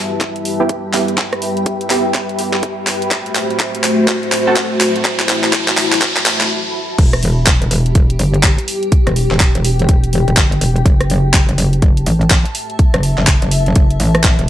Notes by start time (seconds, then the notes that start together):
Already playing: G3 E4 G4 B4 E5 G5 A5 B5, riser
0.21 kick, clap, closed hi-hat
0.36 closed hi-hat
0.45 open hi-hat
0.60 B3 E4 G4
0.69 kick, closed hi-hat
0.94 B3 E4 G4, clap, open hi-hat
1.08 closed hi-hat
1.18 E5, kick, clap, closed hi-hat
1.33 cross-stick, closed hi-hat
1.42 open hi-hat
1.57 closed hi-hat
1.66 kick, closed hi-hat
1.81 closed hi-hat
1.90 B3 E4 G4, clap, open hi-hat
2.14 kick, clap, closed hi-hat
2.29 closed hi-hat
2.39 open hi-hat
2.54 clap
2.63 kick, closed hi-hat
2.87 clap, open hi-hat
3.02 closed hi-hat
3.11 A3 F#4 C5, kick, clap, closed hi-hat
3.26 closed hi-hat
3.35 clap, open hi-hat
3.50 closed hi-hat
3.60 kick, clap, closed hi-hat
3.75 closed hi-hat
3.84 clap, open hi-hat
4.08 kick, clap, closed hi-hat
4.23 closed hi-hat
4.32 clap, open hi-hat
4.47 C4 F#4 A4
4.57 kick, clap, closed hi-hat
4.81 clap, open hi-hat
4.86 A5
4.96 closed hi-hat
5.05 E4, kick, clap, closed hi-hat
5.20 clap, closed hi-hat
5.29 clap, open hi-hat
5.44 clap, closed hi-hat
5.53 kick, clap, closed hi-hat
5.68 clap, closed hi-hat
5.78 clap, open hi-hat
5.93 clap, open hi-hat
6.02 kick, clap, closed hi-hat
6.17 clap, closed hi-hat
6.26 clap, open hi-hat
6.41 clap
6.98 E1 G3 E4 G4 B4, kick, closed hi-hat, crash
7.13 cross-stick, closed hi-hat
7.23 open hi-hat
7.47 E1, kick, clap, closed hi-hat
7.62 E1, closed hi-hat
7.71 E1, open hi-hat
7.86 closed hi-hat
7.95 kick, closed hi-hat
8.10 closed hi-hat
8.19 G1, open hi-hat
8.34 closed hi-hat
8.43 kick, clap, closed hi-hat
8.58 closed hi-hat
8.68 open hi-hat
8.74 G5
8.83 closed hi-hat
8.92 kick, closed hi-hat
9.07 E1, cross-stick, closed hi-hat
9.16 open hi-hat
9.31 E1, clap
9.40 kick, clap, closed hi-hat
9.55 E1, closed hi-hat
9.65 open hi-hat
9.79 closed hi-hat
9.89 E1, kick, closed hi-hat
10.04 closed hi-hat
10.13 open hi-hat
10.28 E1, closed hi-hat
10.37 G1, kick, clap, closed hi-hat
10.52 closed hi-hat
10.61 E1, open hi-hat
10.76 closed hi-hat
10.86 F#1 A3 F#4 C5, kick, closed hi-hat
11.01 cross-stick, closed hi-hat
11.10 open hi-hat
11.29 A5
11.34 F#1, kick, clap, closed hi-hat
11.49 F#1, closed hi-hat
11.58 F#1, open hi-hat
11.73 closed hi-hat
11.82 kick, closed hi-hat
11.97 closed hi-hat
12.06 A1, open hi-hat
12.13 E5
12.21 closed hi-hat
12.30 kick, clap, closed hi-hat
12.45 closed hi-hat
12.55 open hi-hat
12.70 closed hi-hat
12.79 B4, kick, closed hi-hat
12.94 F#1, cross-stick, closed hi-hat
13.03 open hi-hat
13.18 F#1, clap
13.27 kick, clap, closed hi-hat
13.42 F#1, closed hi-hat
13.51 open hi-hat
13.66 closed hi-hat
13.76 F#1, kick, closed hi-hat
13.91 closed hi-hat
14.00 A1, open hi-hat
14.15 cross-stick, closed hi-hat
14.24 kick, clap, closed hi-hat
14.39 E1, closed hi-hat